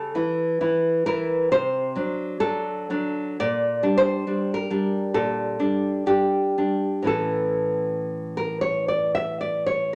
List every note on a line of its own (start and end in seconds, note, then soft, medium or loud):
0.00 0.14 C#3 soft
0.00 1.02 A4 medium
0.15 0.60 E3 soft
0.15 0.60 E4 soft
0.61 1.05 E3 soft
0.61 1.05 E4 soft
1.06 1.48 E3 soft
1.06 1.48 E4 soft
1.06 1.50 A#4 medium
1.52 1.95 C3 medium
1.52 2.37 C5 medium
1.96 2.39 F#3 soft
1.96 2.39 D4 soft
2.40 2.89 F#3 soft
2.40 2.89 D4 soft
2.40 3.35 A4 medium
2.90 3.36 F#3 soft
2.90 3.36 D4 soft
3.40 3.83 A#2 medium
3.40 3.96 D5 medium
3.83 4.26 G3 soft
3.83 4.26 D4 soft
3.98 4.53 C5 medium
4.27 4.69 G3 soft
4.27 4.70 D4 soft
4.54 5.11 A#4 medium
4.70 5.58 G3 soft
4.70 5.58 D4 soft
5.14 5.58 A#2 soft
5.14 6.03 A4 medium
5.59 6.05 G3 soft
5.59 6.06 D4 soft
6.06 6.56 G3 soft
6.06 6.57 D4 soft
6.06 7.04 G4 medium
6.58 7.04 G3 soft
6.58 7.04 D4 soft
7.03 9.95 A2 soft
7.03 9.95 E3 soft
7.03 9.95 C#4 soft
7.07 8.34 A4 medium
8.37 8.61 A#4 medium
8.61 8.88 C#5 medium
8.88 9.14 D5 medium
9.15 9.40 E5 medium
9.41 9.66 D5 medium
9.66 9.93 C#5 medium